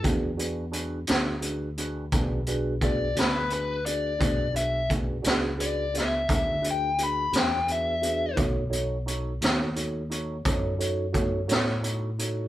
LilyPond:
<<
  \new Staff \with { instrumentName = "Lead electric guitar" } { \time 12/8 \key e \mixolydian \tempo 4. = 58 r1 d''8 b'8 b'8 d''8~ | d''8 e''8 r4 d''8 e''8 e''8 g''8 b''8 g''8 e''4 | r1. | }
  \new Staff \with { instrumentName = "Tine electric piano" } { \time 12/8 \key e \mixolydian <d' fis' gis' b'>8 <d' fis' gis' b'>8 <d' fis' gis' b'>8 <d' fis' gis' b'>8 <d' fis' gis' b'>8 <d' fis' gis' b'>8 <d' fis' gis' b'>8 <d' fis' gis' b'>8 <d' fis' gis' b'>8 <d' fis' gis' b'>8 <d' fis' gis' b'>8 <d' fis' gis' b'>8 | <d' fis' gis' b'>8 <d' fis' gis' b'>8 <d' fis' gis' b'>8 <d' fis' gis' b'>8 <d' fis' gis' b'>8 <d' fis' gis' b'>8 <d' fis' gis' b'>8 <d' fis' gis' b'>8 <d' fis' gis' b'>8 <d' fis' gis' b'>8 <d' fis' gis' b'>8 <d' fis' gis' b'>8 | <dis' fis' a' cis''>8 <dis' fis' a' cis''>8 <dis' fis' a' cis''>8 <dis' fis' a' cis''>8 <dis' fis' a' cis''>8 <dis' fis' a' cis''>8 <dis' fis' a' cis''>8 <dis' fis' a' cis''>8 <dis' fis' a' cis''>8 <dis' fis' a' cis''>8 <dis' fis' a' cis''>8 <dis' fis' a' cis''>8 | }
  \new Staff \with { instrumentName = "Fingered electric bass" } { \clef bass \time 12/8 \key e \mixolydian e,4. d,4. b,,4. d,4. | b,,4. cis,4. d,4. e,4. | b,,4. dis,4. fis,4. a,4. | }
  \new DrumStaff \with { instrumentName = "Drums" } \drummode { \time 12/8 <hh bd>8 hh8 hh8 <hh sn>8 hh8 hh8 <hh bd>8 hh8 <hh bd>8 <hh sn>8 hh8 hh8 | <hh bd>8 hh8 <hh bd>8 <hh sn>8 hh8 <hh sn>8 <hh bd>8 hh8 hh8 <hh sn>8 hh8 hh8 | <hh bd>8 hh8 hh8 <hh sn>8 hh8 hh8 <hh bd>8 hh8 <hh bd>8 <hh sn>8 hh8 hh8 | }
>>